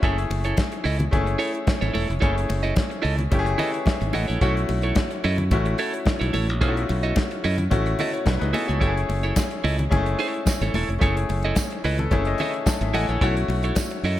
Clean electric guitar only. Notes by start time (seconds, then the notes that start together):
0.04 E4 A4 C#5
0.18 muted clean electric guitar stroke
0.31 muted clean electric guitar stroke
0.45 E4 A4 C#5
0.58 muted clean electric guitar stroke
0.73 muted clean electric guitar stroke
0.84 E4 A4 D#5
0.99 muted clean electric guitar stroke
1.27 muted clean electric guitar stroke
1.39 E4 A4 C#5
1.54 muted clean electric guitar stroke
1.67 muted clean electric guitar stroke
1.81 E4 A4 C#5
1.94 E4 A4 C#5
2.08 muted clean electric guitar stroke
2.20 E4 A4 C#5
2.36 muted clean electric guitar stroke
2.49 muted clean electric guitar stroke
2.63 E4 A4 D#5
2.76 muted clean electric guitar stroke
2.90 muted clean electric guitar stroke
3.02 E4 A4 D#5
3.17 muted clean electric guitar stroke
3.45 muted clean electric guitar stroke
3.58 E4 A4 D#5
3.72 muted clean electric guitar stroke
3.86 muted clean electric guitar stroke
4.01 muted clean electric guitar stroke
4.13 E4 A4 D#5
4.28 E4 A4 C#5
4.42 E4 A4 C#5
4.56 muted clean electric guitar stroke
4.69 muted clean electric guitar stroke
4.83 E4 A4 C#5
4.96 muted clean electric guitar stroke
5.11 muted clean electric guitar stroke
5.24 E4 A4 D#5
5.39 muted clean electric guitar stroke
5.66 muted clean electric guitar stroke
5.79 E4 A4 C#5
5.94 muted clean electric guitar stroke
6.06 muted clean electric guitar stroke
6.20 E4 A4 C#5
6.33 E4 A4 C#5
6.48 muted clean electric guitar stroke
6.61 E4 A4 C#5
6.76 muted clean electric guitar stroke
6.89 muted clean electric guitar stroke
7.03 E4 A4 D#5
7.17 muted clean electric guitar stroke
7.32 muted clean electric guitar stroke
7.44 E4 A4 D#5
7.59 muted clean electric guitar stroke
7.87 muted clean electric guitar stroke
8.00 E4 A4 D#5
8.13 muted clean electric guitar stroke
8.27 muted clean electric guitar stroke
8.41 muted clean electric guitar stroke
8.53 E4 A4 D#5
8.68 E4 A4 C#5
8.81 E4 A4 C#5
8.96 muted clean electric guitar stroke
9.09 muted clean electric guitar stroke
9.23 E4 A4 C#5
9.36 muted clean electric guitar stroke
9.51 muted clean electric guitar stroke
9.64 E4 A4 D#5
9.79 muted clean electric guitar stroke
10.06 muted clean electric guitar stroke
10.19 E4 A4 C#5
10.34 muted clean electric guitar stroke
10.47 muted clean electric guitar stroke
10.62 E4 A4 C#5
10.75 E4 A4 C#5
10.90 muted clean electric guitar stroke
11.02 E4 A4 C#5
11.16 muted clean electric guitar stroke
11.30 muted clean electric guitar stroke
11.45 E4 A4 D#5
11.58 muted clean electric guitar stroke
11.72 muted clean electric guitar stroke
11.84 E4 A4 D#5
11.99 muted clean electric guitar stroke
12.27 muted clean electric guitar stroke
12.40 E4 A4 D#5
12.55 muted clean electric guitar stroke
12.68 muted clean electric guitar stroke
12.82 muted clean electric guitar stroke
12.94 E4 A4 D#5
13.09 E4 A4 C#5
13.21 E4 A4 C#5
13.36 muted clean electric guitar stroke
13.49 muted clean electric guitar stroke
13.64 E4 A4 C#5
13.77 muted clean electric guitar stroke
13.91 muted clean electric guitar stroke
14.05 E4 A4 D#5